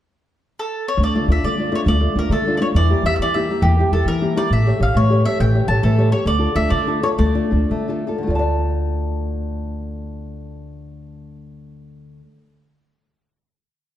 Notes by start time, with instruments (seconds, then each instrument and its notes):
0.59 mandolin A4
0.88 mandolin C#5
0.98 upright bass D2, nylon-string guitar D3
1.03 mandolin D5
1.15 nylon-string guitar A3 D4 F4
1.28 upright bass D2, nylon-string guitar A3 D4 F4, mandolin E5
1.43 upright bass D3, nylon-string guitar A3, mandolin D5
1.58 nylon-string guitar A3 D4 F4
1.72 nylon-string guitar A3 D4 F4, mandolin C#5
1.86 upright bass D2, nylon-string guitar A3, mandolin D5
2.00 nylon-string guitar A3 D4 F4
2.15 upright bass D2, nylon-string guitar A3 D4 F4, mandolin A#4
2.29 upright bass D3, nylon-string guitar A3, mandolin A4
2.46 nylon-string guitar A3 D4 F4
2.57 nylon-string guitar A3 D4 F4, mandolin D5
2.62 mandolin C#5
2.74 upright bass E2, nylon-string guitar E3, mandolin D5
2.90 nylon-string guitar A#3 E4 G4
3.03 upright bass E2, nylon-string guitar A#3 E4 G4, mandolin E5
3.16 upright bass E3, mandolin E5
3.22 nylon-string guitar E3, mandolin D5
3.34 nylon-string guitar A#3 E4 G4, mandolin E5
3.50 nylon-string guitar A#3 E4 G4
3.62 upright bass E2, nylon-string guitar A#3, mandolin G4
3.79 nylon-string guitar A#3 E4 G4
3.92 upright bass E2, nylon-string guitar A#3 E4 G4, mandolin A4
4.05 upright bass E3, nylon-string guitar E3, mandolin A#4
4.21 nylon-string guitar A#3 E4 G4
4.36 nylon-string guitar A#3 E4 G4, mandolin D5
4.50 upright bass A1, nylon-string guitar A3, mandolin E5
4.66 nylon-string guitar G4 A4 C#5
4.79 upright bass A1, nylon-string guitar G4 A4 C#5, mandolin F5
4.94 upright bass A2, nylon-string guitar E3, mandolin C#5
5.10 nylon-string guitar G4 A4 C#5
5.25 nylon-string guitar G4 A4 C#5, mandolin E5
5.40 upright bass A1, nylon-string guitar E3, mandolin G5
5.55 nylon-string guitar G4 A4 C#5
5.68 upright bass A1, nylon-string guitar G4 A4 C#5, mandolin A5
5.83 upright bass A2, nylon-string guitar E3, mandolin A4
5.98 nylon-string guitar G4 A4 C#5
6.12 nylon-string guitar G4 A4 C#5, mandolin C#5
6.25 upright bass D2, nylon-string guitar D3, mandolin D5
6.39 nylon-string guitar D4 F4 A4
6.55 upright bass D2, nylon-string guitar D4 F4 A4, mandolin E5
6.69 upright bass D3, nylon-string guitar A3, mandolin D5
6.87 nylon-string guitar D4 F4 A4
7.02 nylon-string guitar D4 F4 A4, mandolin C#5
7.18 upright bass D2, nylon-string guitar A3, mandolin D5
7.34 nylon-string guitar D4 F4 A4
7.51 upright bass D2, nylon-string guitar D4 F4 A4
7.70 upright bass D3, nylon-string guitar A3
7.88 nylon-string guitar D4 F4 A4
8.07 nylon-string guitar D4 F4 A4
8.18 nylon-string guitar D3
8.23 nylon-string guitar A3
8.27 upright bass D2, nylon-string guitar F4 D5
8.35 nylon-string guitar D5 A5